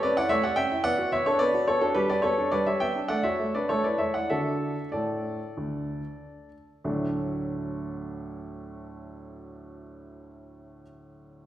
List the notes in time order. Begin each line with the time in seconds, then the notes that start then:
0.03 C#4 B4 D5
0.17 E4 D5 F#5
0.29 A3 C#5 E5
0.44 G4 D5 F#5
0.56 C#4 E5 G5
0.71 E4
0.84 B3 D5 F#5
0.99 F#4
1.12 B3 C#5 E5
1.26 D4 A4 C#5
1.39 B3 B4 D5
1.54 F#4
1.68 B3 A4 C#5
1.81 D4 F#4 A4
1.94 G3 G4 B4
2.09 G4 B4 D5
2.22 B3 A4 C#5
2.38 D4
2.52 G3 B4 D5
2.66 G4 C#5 E5
2.80 B3 E5 G5
2.96 D4
3.08 A3 D5 F#5
3.23 F#4 C#5 E5
3.40 A3
3.55 D4 B4 D5
3.69 A3 A4 C#5
3.84 E4 B4 D5
3.98 A3 C#5 E5
4.14 E4 D5 F#5
4.30 D3 D4 F#4 A4 E5
4.92 A2 A4 D5
5.57 D2
6.84 D2 A2 F#3 A3 D4 F#4